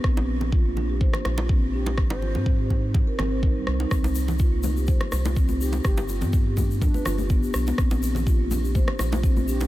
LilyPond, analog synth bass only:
\new Staff \with { instrumentName = "Analog synth bass" } { \clef bass \time 4/4 \key g \phrygian \tempo 4 = 124 bes,,2~ bes,,16 r16 bes,,4. | aes,,8. aes,4. r16 aes,,4 c,16 r16 | c,2~ c,16 r16 c,4. | g,,8. g,4. r16 g,,4 b,,16 r16 |
bes,,2~ bes,,16 r16 bes,,4. | }